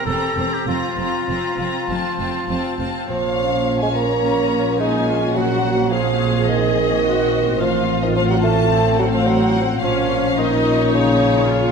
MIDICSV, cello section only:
0, 0, Header, 1, 2, 480
1, 0, Start_track
1, 0, Key_signature, -5, "minor"
1, 0, Tempo, 605449
1, 537, Time_signature, 4, 2, 24, 8
1, 1982, Tempo, 585938
1, 2942, Tempo, 558140
1, 9861, End_track
2, 0, Start_track
2, 0, Title_t, "Cello section"
2, 0, Program_c, 0, 48
2, 60, Note_on_c, 0, 40, 41
2, 123, Note_off_c, 0, 40, 0
2, 296, Note_on_c, 0, 40, 32
2, 359, Note_off_c, 0, 40, 0
2, 537, Note_on_c, 0, 41, 41
2, 600, Note_off_c, 0, 41, 0
2, 777, Note_on_c, 0, 41, 39
2, 841, Note_off_c, 0, 41, 0
2, 1024, Note_on_c, 0, 41, 39
2, 1088, Note_off_c, 0, 41, 0
2, 1264, Note_on_c, 0, 41, 35
2, 1328, Note_off_c, 0, 41, 0
2, 1508, Note_on_c, 0, 41, 41
2, 1571, Note_off_c, 0, 41, 0
2, 1742, Note_on_c, 0, 41, 35
2, 1806, Note_off_c, 0, 41, 0
2, 1983, Note_on_c, 0, 41, 39
2, 2048, Note_off_c, 0, 41, 0
2, 2226, Note_on_c, 0, 41, 32
2, 2292, Note_off_c, 0, 41, 0
2, 2459, Note_on_c, 0, 46, 46
2, 6279, Note_off_c, 0, 46, 0
2, 6318, Note_on_c, 0, 45, 48
2, 8225, Note_on_c, 0, 46, 52
2, 8231, Note_off_c, 0, 45, 0
2, 9861, Note_off_c, 0, 46, 0
2, 9861, End_track
0, 0, End_of_file